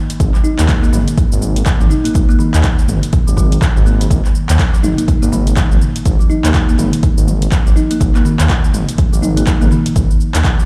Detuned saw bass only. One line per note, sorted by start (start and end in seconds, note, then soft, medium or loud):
0.20 0.31 G#1 loud
0.59 0.66 D#2 medium
0.93 1.04 G#1 medium
1.32 1.63 G#1 loud
1.81 1.88 G#1 medium
2.15 2.26 G#1 loud
2.55 2.62 D#2 medium
2.88 2.99 G#1 medium
3.27 3.58 G#1 loud
3.76 4.06 G#1 medium
4.11 4.21 G#1 loud
4.50 4.57 D#2 medium
4.83 4.94 G#1 medium
5.23 5.53 G#1 loud
5.71 5.78 G#1 medium
6.06 6.16 G#1 loud
6.44 6.52 D#2 medium
6.78 6.89 G#1 medium
7.17 7.48 G#1 loud
7.66 7.74 G#1 medium
8.01 8.12 G#1 loud
8.40 8.47 D#2 medium
8.74 8.85 G#1 medium
9.13 9.43 G#1 loud
9.61 9.69 G#1 loud
9.96 10.07 G#1 loud
10.35 10.42 D#2 medium